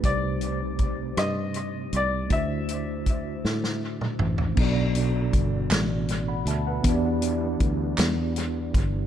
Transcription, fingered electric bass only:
X:1
M:6/8
L:1/8
Q:3/8=53
K:Bphr
V:1 name="Fingered electric bass" clef=bass
C,,3 G,,2 C,, | D,,3 A,,2 A,,, | B,,,2 G,,, A,,,2 D,, | E,,2 D,, E,,2 G,,, |]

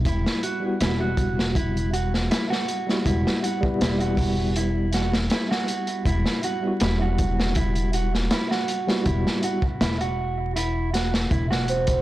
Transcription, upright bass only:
X:1
M:4/4
L:1/8
Q:1/4=80
K:Em
V:1 name="Upright bass" clef=bass
E,,, z E,,,4 z2 | E,,, z E,,,4 z2 | E,,, z E,,,4 z2 | E,,, z E,,,4 E,,,2 |]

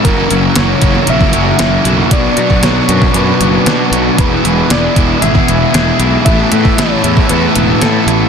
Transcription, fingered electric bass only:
X:1
M:4/4
L:1/8
Q:1/4=116
K:Emix
V:1 name="Fingered electric bass" clef=bass
F,,, F,,, F,,, F,,, ^A,,, F,,, F,,, B,,, | B,,, B,, B,,, F,, F,, F,,, B,, B,,, | E,,, E,,, E,,, E,,, G,,, E,,, E,,, B,,, | A,,, A,, A,,, E,, E,, E,,, A,, A,,, |]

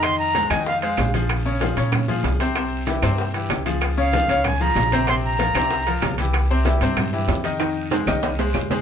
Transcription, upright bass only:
X:1
M:4/4
L:1/8
Q:1/4=190
K:Fm
V:1 name="Upright bass" clef=bass
F,,3 F,,3 B,,,2- | B,,,3 B,,3 C,,2- | C,,3 G,,3 D,,2- | D,,3 D,,3 B,,,2- |
B,,,3 C,,3 C,,2- | C,,3 G,,3 F,,2- | F,,3 C,,3 F,,2 |]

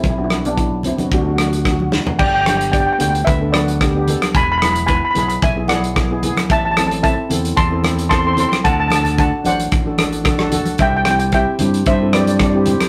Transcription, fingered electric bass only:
X:1
M:4/4
L:1/8
Q:"Swing 16ths" 1/4=112
K:G
V:1 name="Fingered electric bass" clef=bass
B,,,4 D,,4 | G,,,3 D,, D,,4 | E,,,3 B,,, B,,,4 | A,,,3 E,, E,,4 |
D,,3 A,,, A,,,4 | C,,3 G,, G,,4 |]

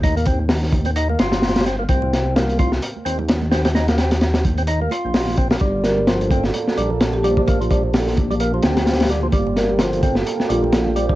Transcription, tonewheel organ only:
X:1
M:4/4
L:1/16
Q:"Swing 16ths" 1/4=129
K:Gm
V:1 name="Tonewheel organ"
E B, C z4 C E B, F4 C B, | C4 B,2 F z3 C z3 C C | E B, C z4 C E B, F4 C B, | G,4 F,2 C z3 G, z3 G, G, |
B, F, G, z4 G, B, F, C4 G, F, | G,4 F,2 C z3 G, z3 G, G, |]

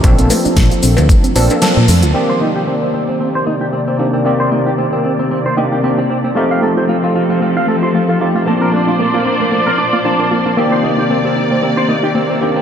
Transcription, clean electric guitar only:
X:1
M:4/4
L:1/16
Q:"Swing 16ths" 1/4=114
K:Cdor
V:1 name="Clean electric guitar"
z16 | C c E G C C C C C c E G C C C C | C c E G C C C C C c E G C C C C | F f A c F F F F F f A c F F F F |
B, B D F B, B, B, B, B, B D F B, B, B, B, | C c E G C C C C C c E G C C C C |]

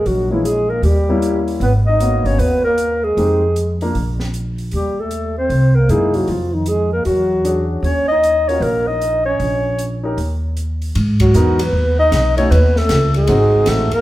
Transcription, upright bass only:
X:1
M:4/4
L:1/8
Q:"Swing" 1/4=154
K:Ebm
V:1 name="Upright bass" clef=bass
B,,,4 E,,4 | A,,,3 =G,,, E,,4 | F,,4 B,,,4 | E,,4 =C,,2 G,,2 |
F,,4 =E,,4 | E,,4 B,,,4 | B,,,4 E,,4 | [K:G#m] G,,2 E,,2 D,,2 B,,,2 |
D,,2 C,,2 G,,,2 =A,,, z |]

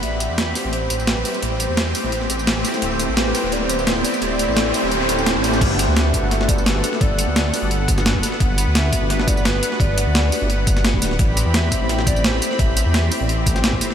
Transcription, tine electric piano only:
X:1
M:4/4
L:1/16
Q:"Swing 16ths" 1/4=172
K:G
V:1 name="Tine electric piano"
z6 [A,CEGc] [A,CEGc] z6 [A,CEGc] [A,CEGc] | z6 [A,CEGc] [A,CEGc] z6 [A,CEGc] [A,CEGc] | [A,CEGc] [A,CEGc]2 z [A,CEGc] [A,CEGc]2 z [A,CEGc] [A,CEGc]2 z [A,CEGc] [A,CEGc]2 z | [A,CEGc] [A,CEGc] [A,CEGc] [A,CEGc] [A,CEGc] [A,CEGc] [A,CEGc] [A,CEGc] [A,CEGc] [A,CEGc] [A,CEGc] [A,CEGc] [A,CEGc] [A,CEGc] [A,CEGc] [A,CEGc] |
[A,DFGB]6 [A,DFGB] [A,DFGB]2 [A,DFGB]6 [A,DFGA] | z6 [A,DFGB] [A,DFGd] z3 [A,DFGB]3 [A,DFGB] z | z6 [A,DFGB] [A,DFGB]2 [A,DFGB]6 [A,DFGA] | z6 [A,DFGB] [A,DFGd] z3 [A,DFGB]3 [A,DFGB] z |
z6 [A,CEGc] [A,CEGc]2 [A,CEGc]6 [A,CEGB] | z6 [A,CEGc] [A,CEGd] z3 [A,CEGc]3 [A,CEGc] z |]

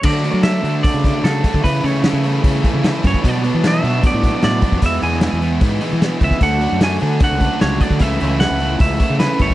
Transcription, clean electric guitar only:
X:1
M:4/4
L:1/8
Q:1/4=151
K:A
V:1 name="Clean electric guitar"
d2 e2 d2 A2 | B c3 z3 c | d2 e2 d2 d2 | e g3 z3 e |
f2 g2 f2 c d | e2 f2 e2 B c |]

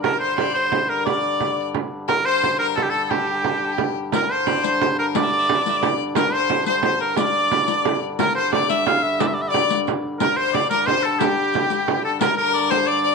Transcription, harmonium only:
X:1
M:6/8
L:1/8
Q:3/8=118
K:Gdor
V:1 name="Harmonium" clef=bass
[G,,D,]6- | [G,,D,]6- | [G,,D,]6- | [G,,D,]6 |
[G,,D,]6- | [G,,D,]6- | [G,,D,]6- | [G,,D,]6 |
[G,,D,]6- | [G,,D,]6- | [G,,D,]6- | [G,,D,]6 |
[G,,D,]6 |]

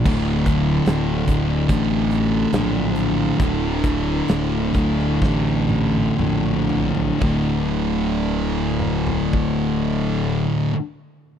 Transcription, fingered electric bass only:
X:1
M:4/4
L:1/8
Q:1/4=63
K:Cmix
V:1 name="Fingered electric bass" clef=bass
D,,,2 D,,, D,,, A,,,2 B,,,2 | D,,,2 D,,, D,,, A,,,2 B,,,2 | D,,,8 |]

